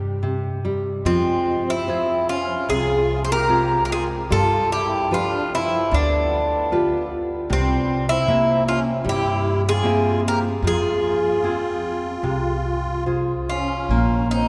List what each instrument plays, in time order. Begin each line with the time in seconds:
Already playing: upright bass G2, nylon-string guitar G3
0.23 nylon-string guitar C3
0.65 nylon-string guitar G3
1.03 upright bass F2, nylon-string guitar F3, accordion G#3, bouzouki C4
1.67 accordion C4, bouzouki E4
1.88 nylon-string guitar F3 G#4 C5
2.29 accordion C#4, bouzouki F4
2.69 upright bass C2, nylon-string guitar C3, accordion F4, bouzouki G#4
3.24 accordion G#4, bouzouki C5
3.32 accordion G4, bouzouki A#4
3.49 nylon-string guitar G#3 C4 F4
3.85 accordion G4, bouzouki A#4
3.90 accordion F4, bouzouki G#4
4.30 upright bass G2, nylon-string guitar G3, accordion F4, bouzouki A4
4.71 accordion E4, bouzouki G4
5.11 nylon-string guitar F3 G4 B4, accordion D4, bouzouki F4
5.53 accordion C4, bouzouki E4
5.91 upright bass D2, nylon-string guitar D3, accordion B3, bouzouki D4
6.72 nylon-string guitar F4 G4 B4
7.50 upright bass C2, nylon-string guitar C3, accordion G3, bouzouki C4
8.09 accordion C4, bouzouki E4
8.27 nylon-string guitar C3 A#3 E5
8.68 accordion C#4, bouzouki F4
9.04 upright bass G2, nylon-string guitar G3, accordion E4
9.09 bouzouki G4
9.67 accordion F4, bouzouki G#4
9.83 nylon-string guitar A#3 C4 E5
10.28 accordion G4, bouzouki A#4
10.63 upright bass F2, nylon-string guitar F3
10.67 accordion F4, bouzouki G#4
11.44 nylon-string guitar C4 F4 G#4
12.23 upright bass C2, nylon-string guitar C3
13.06 nylon-string guitar F4 G#4 C5
13.49 accordion C#4, bouzouki F4
13.89 upright bass A#1, nylon-string guitar A#3
14.31 accordion C4, bouzouki D#4